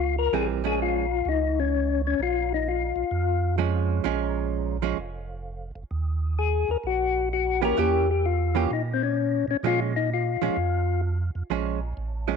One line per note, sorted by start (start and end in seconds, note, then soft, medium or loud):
0.00 0.29 C#2 medium
0.00 0.16 F4 medium
0.18 0.34 A#4 medium
0.33 1.22 A#1 medium
0.33 0.61 E3 soft
0.33 0.61 G3 soft
0.33 0.62 C4 soft
0.33 0.47 G#4 loud
0.64 1.04 F3 soft
0.64 1.05 G#3 medium
0.64 1.05 C#4 medium
0.64 0.80 G#4 medium
0.82 1.29 F4 medium
1.25 2.15 C#2 medium
1.25 1.59 D#4 medium
1.60 2.02 C#4 medium
2.07 2.21 C#4 medium
2.19 2.93 A#1 medium
2.19 2.53 F4 medium
2.54 2.68 D#4 medium
2.69 3.56 F4 medium
2.96 3.04 A#1 soft
3.11 4.01 F2 medium
3.58 4.03 F3 soft
3.58 4.04 G#3 medium
3.58 4.04 C#4 medium
4.04 4.94 A#1 medium
4.04 4.76 F3 medium
4.04 4.76 G#3 medium
4.04 4.77 C#4 medium
4.82 4.96 F3 medium
4.82 4.97 G#3 medium
4.82 4.97 C#4 medium
4.97 5.71 F1 medium
5.75 5.83 F1 soft
5.91 6.65 D#2 medium
6.39 6.70 G#4 medium
6.68 6.76 D#2 soft
6.68 6.77 A#4 medium
6.83 7.73 A#1 medium
6.83 7.29 F#4 medium
7.33 7.61 F#4 medium
7.62 7.76 E3 soft
7.62 7.76 A#3 soft
7.62 7.76 C#4 medium
7.62 7.76 G4 medium
7.62 7.79 A#4 medium
7.77 8.67 E2 medium
7.77 8.05 E3 medium
7.77 8.06 A#3 medium
7.77 8.06 C#4 medium
7.77 8.06 G4 medium
7.77 8.10 G4 medium
8.11 8.26 G4 medium
8.26 8.73 F4 medium
8.55 8.69 E3 soft
8.55 8.69 A#3 soft
8.55 8.69 C#4 soft
8.55 8.70 G4 medium
8.71 9.44 A#2 medium
8.71 8.82 D#4 medium
8.94 9.02 C4 medium
9.03 9.46 C#4 medium
9.48 9.55 A#2 soft
9.48 9.57 C#4 medium
9.63 10.37 A#2 medium
9.63 9.92 F3 medium
9.63 9.92 G#3 medium
9.63 9.93 C#4 medium
9.63 9.80 F4 medium
9.96 10.10 D#4 medium
10.14 11.01 F4 medium
10.42 10.49 A#2 soft
10.42 10.55 F3 medium
10.42 10.56 G#3 medium
10.42 10.56 C#4 medium
10.57 11.30 F2 medium
11.35 11.43 F2 soft
11.50 11.93 A#1 medium
11.50 11.78 F3 soft
11.50 11.79 G#3 soft
11.50 11.79 C#4 soft
11.97 12.37 A1 medium
12.28 12.37 F3 soft
12.28 12.37 G#3 soft
12.28 12.37 C#4 soft